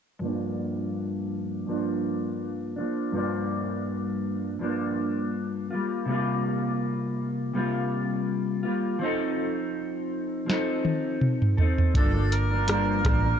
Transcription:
0.19 clean electric guitar G2 F3
0.23 clean electric guitar A#3 D4
1.67 clean electric guitar G2 F3 A#3
1.71 clean electric guitar D4
2.76 clean electric guitar A#3 D4
2.80 clean electric guitar F3
3.12 clean electric guitar G2 F3 A#3
3.18 clean electric guitar D4
4.59 clean electric guitar G2 F3 A#3 D4
5.70 clean electric guitar G3 A#3 F4
6.05 clean electric guitar C3 G3 A#3
6.12 clean electric guitar F4
7.53 clean electric guitar C3 G3 A#3 F4
8.63 clean electric guitar G3 A#3 F4
8.99 clean electric guitar F3 C4
9.03 clean electric guitar D#4 A4
10.46 clean electric guitar F3 C4 D#4, snare
10.51 clean electric guitar A4
10.85 high tom
11.21 mid tom
11.42 mid tom
11.57 clean electric guitar D#4 A4, floor tom
11.62 clean electric guitar C4
11.78 floor tom
11.94 fingered electric bass G1, clean electric guitar G2 F3 A#3 D4, melodica A4, kick, closed hi-hat
12.14 clean electric guitar F3 A#3 D4
12.32 melodica A#4, closed hi-hat
12.51 clean electric guitar A#3 D4
12.56 clean electric guitar F3
12.67 clean electric guitar G2 F3 A#3 D4, cross-stick, closed hi-hat
13.04 fingered electric bass A1, clean electric guitar G2 F3 A#3, kick, cross-stick, closed hi-hat
13.08 clean electric guitar D4
13.24 clean electric guitar A#3 D4
13.28 clean electric guitar F3

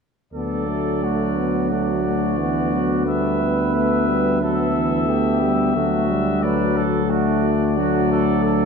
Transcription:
0.33 bass trombone D2, trombone F#3, french horn B3, flugelhorn A4, trumpet D5
0.68 french horn A3
1.03 french horn A3, flugelhorn F#4
1.37 french horn B3
1.71 french horn A3, trumpet D5
2.04 french horn A3
2.39 trombone E3, french horn B3, flugelhorn F#4
2.72 trombone F#3
3.06 trombone G3, french horn A3, flugelhorn B4, trumpet E5
3.40 french horn B3
3.74 trombone A3, trumpet E5
4.08 trombone G3
4.41 trombone F#3, french horn B3, flugelhorn A4, trumpet E5
4.75 trombone E3
5.09 trombone A3, flugelhorn G4
5.42 trombone G3
5.75 bass trombone D2, trombone F#3, french horn A3, flugelhorn F#4
6.10 french horn G3
6.43 french horn F#3, trombone A3, flugelhorn B4, trumpet D5
6.77 flugelhorn A4
7.10 trombone A3, flugelhorn F#4, trumpet D5
7.77 trombone F#3, french horn A3, flugelhorn F#4
8.12 flugelhorn A4
8.44 flugelhorn A4

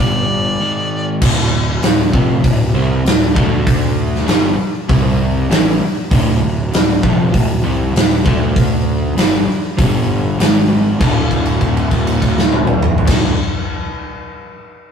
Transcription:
0.00 picked electric bass G1, overdriven electric guitar G2 D3 G3, harmonica D5
0.61 overdriven electric guitar G#2 D#3 G#3
1.21 picked electric bass D1, overdriven electric guitar D2 A2 D3, kick, crash
1.52 picked electric bass D1, overdriven electric guitar D2 A2
1.81 picked electric bass D1, overdriven electric guitar D2 A2, snare, open hi-hat
2.13 picked electric bass F1, overdriven electric guitar F2 C3 F3, kick
2.44 picked electric bass D1, overdriven electric guitar D2 A2, kick, open hi-hat
2.74 picked electric bass C2, overdriven electric guitar C3 G3 C4
3.05 picked electric bass D1, overdriven electric guitar D2 A2, snare, open hi-hat
3.34 picked electric bass D2, overdriven electric guitar D3 A3 D4, kick
3.67 kick, open hi-hat
4.15 snare
4.26 picked electric bass G1, overdriven electric guitar G2 D3 G3, snare, open hi-hat
4.58 muted overdriven electric guitar stroke, muted picked electric bass stroke
4.88 picked electric bass C2, overdriven electric guitar C3 G3 C4, kick, open hi-hat
5.50 picked electric bass A1, overdriven electric guitar A2 E3 A3, snare, open hi-hat
5.81 muted picked electric bass stroke, muted overdriven electric guitar stroke
6.11 picked electric bass D1, overdriven electric guitar D2 A2 D3, kick, open hi-hat
6.42 picked electric bass D1, overdriven electric guitar D2 A2
6.72 picked electric bass D1, overdriven electric guitar D2 A2, snare, open hi-hat
7.03 picked electric bass F1, overdriven electric guitar F2 C3 F3, kick
7.32 picked electric bass D1, overdriven electric guitar D2 A2, kick, open hi-hat
7.63 picked electric bass C2, overdriven electric guitar C3 G3 C4
7.94 picked electric bass D1, overdriven electric guitar D2 A2, snare, open hi-hat
8.25 picked electric bass D2, overdriven electric guitar D3 A3 D4, kick
8.56 kick, open hi-hat
9.15 picked electric bass G1, overdriven electric guitar G2 D3 G3, open hi-hat
9.19 snare
9.47 muted overdriven electric guitar stroke, muted picked electric bass stroke
9.78 picked electric bass G1, overdriven electric guitar G2 D3 G3, kick, open hi-hat
10.38 picked electric bass G#1, overdriven electric guitar G#2 D#3 G#3, snare, open hi-hat
10.99 picked electric bass D1, overdriven electric guitar D2 A2, kick, crash
11.03 overdriven electric guitar D3
11.31 kick, crash
11.46 crash
11.61 kick, crash
11.77 crash
11.91 kick, crash
12.07 crash
12.22 kick, crash
12.38 snare
12.52 high tom
12.67 mid tom
12.82 mid tom
12.98 floor tom
13.06 picked electric bass D1, overdriven electric guitar D2 A2 D3, kick, snare, crash

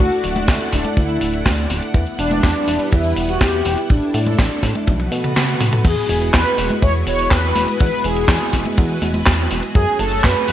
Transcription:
Already playing: string machine A3 D4 E4 D5 F#5, analog polysynth F#4
0.00 analog synth bass D2
0.12 closed hi-hat
0.24 analog synth bass D1, open hi-hat
0.36 closed hi-hat, high conga
0.48 analog synth bass D2, kick, snare, closed hi-hat
0.60 closed hi-hat
0.72 analog synth bass D1, analog polysynth D4, kick, snare, open hi-hat
0.85 closed hi-hat, high conga
0.97 analog synth bass D2, analog polysynth E4, kick, closed hi-hat
1.09 closed hi-hat
1.21 analog synth bass D1, open hi-hat
1.33 closed hi-hat
1.46 analog synth bass D2, kick, snare, closed hi-hat
1.58 closed hi-hat
1.70 analog synth bass D1, open hi-hat
1.82 closed hi-hat
1.94 analog synth bass E2, string machine G3 B3 E4 B4, kick, closed hi-hat
2.07 closed hi-hat
2.19 analog synth bass E1, analog polysynth D4, open hi-hat
2.31 closed hi-hat, high conga
2.43 analog synth bass E2, kick, snare, closed hi-hat
2.56 closed hi-hat
2.68 analog synth bass E1, open hi-hat
2.80 closed hi-hat
2.92 analog synth bass E2, analog polysynth E4, kick, closed hi-hat
3.04 closed hi-hat
3.16 analog synth bass E1, open hi-hat
3.29 analog polysynth F#4, closed hi-hat
3.41 analog synth bass E2, analog polysynth G4, kick, snare, closed hi-hat
3.53 closed hi-hat
3.65 analog synth bass E1, open hi-hat
3.78 closed hi-hat
3.90 analog synth bass A1, string machine D4 A4, analog polysynth D4, kick, closed hi-hat
4.02 closed hi-hat
4.14 analog synth bass A2, open hi-hat
4.26 closed hi-hat, high conga
4.39 analog synth bass A1, kick, snare, closed hi-hat
4.51 closed hi-hat
4.63 analog synth bass A2, kick, snare, open hi-hat
4.75 closed hi-hat, high conga
4.87 analog synth bass B1, string machine A3 B3 F#4 B4, kick, closed hi-hat, high tom
5.00 closed hi-hat, high tom
5.12 analog synth bass B2, open hi-hat
5.24 closed hi-hat, mid tom
5.36 snare, closed hi-hat, mid tom
5.48 closed hi-hat
5.60 mid tom, open hi-hat
5.73 closed hi-hat, mid tom
5.85 analog synth bass E2, string machine G#3 B3 E4 F#4 B4, analog polysynth G#4, kick, closed hi-hat, crash
6.09 analog synth bass E1, open hi-hat
6.22 closed hi-hat
6.34 analog synth bass E2, analog polysynth B4, kick, snare, clap, closed hi-hat
6.58 analog synth bass E1, open hi-hat
6.70 closed hi-hat, high conga
6.82 analog synth bass E2, analog polysynth C#5, kick, closed hi-hat
7.07 analog synth bass E1, analog polysynth C#5, open hi-hat
7.19 closed hi-hat
7.31 analog synth bass E2, analog polysynth B4, kick, snare, clap, closed hi-hat
7.55 analog synth bass E1, open hi-hat, high conga
7.68 closed hi-hat
7.80 analog synth bass E2, analog polysynth B4, kick, closed hi-hat
8.04 analog synth bass E1, analog polysynth G#4, open hi-hat
8.16 closed hi-hat
8.28 analog synth bass E2, kick, snare, clap, closed hi-hat
8.53 analog synth bass E1, kick, snare, open hi-hat
8.65 closed hi-hat, high conga
8.77 analog synth bass E2, kick, closed hi-hat
9.02 analog synth bass E1, open hi-hat, high conga
9.14 closed hi-hat, high conga
9.26 analog synth bass E2, kick, snare, clap, closed hi-hat
9.50 analog synth bass E1, open hi-hat
9.63 closed hi-hat
9.75 analog synth bass F#2, string machine A3 C#4 G#4 C#5, analog polysynth G#4, kick, closed hi-hat
9.99 analog synth bass F#1, analog polysynth A4, open hi-hat
10.12 closed hi-hat
10.24 analog synth bass F#2, analog polysynth B4, kick, snare, clap, closed hi-hat
10.48 analog synth bass F#1, open hi-hat

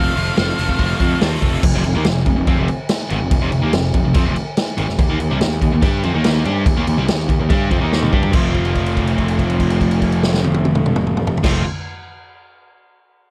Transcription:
Already playing: distorted electric guitar F3 A3 C4 F4 A4, lead electric guitar F5
0.16 picked electric bass F1, distorted electric guitar F3 A3 C4 F4 A4, open hi-hat
0.37 picked electric bass F1, distorted electric guitar F3 A3 C4 F4 A4, snare, open hi-hat
0.57 picked electric bass F1, distorted electric guitar F3 A3 C4 F4 A4, open hi-hat
0.69 kick
0.78 picked electric bass F1, distorted electric guitar F3 A3 C4 F4 A4, kick, open hi-hat
0.99 picked electric bass F2, distorted electric guitar F3 A3 C4 F4 A4, kick, open hi-hat
1.21 picked electric bass D#2, distorted electric guitar F3 A3 C4 F4 A4, snare, open hi-hat
1.42 picked electric bass F1, distorted electric guitar F3 A3 C4 F4 A4, kick, open hi-hat
1.63 picked electric bass F1, distorted electric guitar F2 C3, kick, crash
1.74 picked electric bass F1, distorted electric guitar F2 C3
1.84 picked electric bass F1, distorted electric guitar F2 C3, crash
1.95 picked electric bass D#2, distorted electric guitar D#3 A#3
2.05 picked electric bass F1, distorted electric guitar F2 C3, snare, crash
2.26 picked electric bass F1, distorted electric guitar F2 C3, kick, crash
2.36 picked electric bass F1, distorted electric guitar F2 C3
2.47 picked electric bass F2, distorted electric guitar F3 C4, kick, crash
2.57 picked electric bass F1, distorted electric guitar F2 C3
2.68 crash
2.89 snare, crash
3.09 picked electric bass G#1, distorted electric guitar G#2 D#3, crash
3.20 picked electric bass F1, distorted electric guitar F2 C3
3.31 picked electric bass F1, distorted electric guitar F2 C3, kick, crash
3.41 picked electric bass F1, distorted electric guitar F2 C3
3.52 picked electric bass F1, distorted electric guitar F2 C3, crash
3.62 picked electric bass D#2, distorted electric guitar D#3 A#3
3.73 picked electric bass F1, distorted electric guitar F2 C3, snare, crash
3.94 picked electric bass F1, distorted electric guitar F2 C3, kick, crash
4.04 picked electric bass F1, distorted electric guitar F2 C3
4.14 picked electric bass F2, distorted electric guitar F3 C4, kick, crash
4.25 picked electric bass F1, distorted electric guitar F2 C3
4.36 crash
4.57 snare, crash
4.77 picked electric bass G#1, distorted electric guitar G#2 D#3, crash
4.88 picked electric bass F1, distorted electric guitar F2 C3, snare
4.99 picked electric bass D#2, distorted electric guitar D#3 A#3, kick, crash
5.09 picked electric bass D#2, distorted electric guitar D#3 A#3
5.20 picked electric bass D#2, distorted electric guitar D#3 A#3, crash
5.31 picked electric bass C2, distorted electric guitar C3 G3
5.41 picked electric bass D#2, distorted electric guitar D#3 A#3, snare, crash
5.61 picked electric bass D#2, distorted electric guitar D#3 A#3, kick, crash
5.72 picked electric bass D#2, distorted electric guitar D#3 A#3
5.81 picked electric bass G2, distorted electric guitar G3 D4 G4, kick, crash
6.03 picked electric bass F2, distorted electric guitar F3 C4, crash
6.14 picked electric bass D#2, distorted electric guitar D#3 A#3 D#4
6.24 snare, crash
6.44 picked electric bass G2, distorted electric guitar G3 D4 G4, crash
6.66 picked electric bass D#2, distorted electric guitar D#3 A#3, kick, crash
6.76 picked electric bass D#2, distorted electric guitar D#3 A#3
6.87 picked electric bass D#2, distorted electric guitar D#3 A#3, crash
6.97 picked electric bass C2, distorted electric guitar C3 G3
7.07 picked electric bass D#2, distorted electric guitar D#3 A#3, snare, crash
7.29 picked electric bass D#2, distorted electric guitar D#3 A#3, kick, crash
7.40 picked electric bass D#2, distorted electric guitar D#3 A#3
7.49 picked electric bass G2, distorted electric guitar G3 D4 G4, kick, crash
7.70 picked electric bass F2, distorted electric guitar F3 C4, kick, crash
7.81 picked electric bass D#2, distorted electric guitar D#3 A#3 D#4
7.93 snare
8.03 mid tom
8.12 picked electric bass G2, distorted electric guitar G3 D4 G4, kick
8.23 floor tom
8.32 picked electric bass F1, distorted electric guitar F3 A3 C4 F4, kick, crash
8.54 kick, crash
8.65 crash
8.75 kick, crash
8.86 crash
8.97 kick, crash
9.07 crash
9.18 kick, crash
9.28 crash
9.39 kick, crash
9.50 crash
9.60 kick, crash
9.70 crash
9.81 kick, crash
9.91 crash
10.02 kick, crash
10.12 crash
10.23 snare
10.34 snare
10.44 high tom
10.54 high tom
10.65 high tom
10.75 mid tom
10.86 mid tom
10.96 mid tom
11.07 mid tom
11.17 mid tom
11.27 floor tom
11.37 floor tom
11.43 picked electric bass F1, distorted electric guitar F3 A3 C4 F4, kick, snare, crash

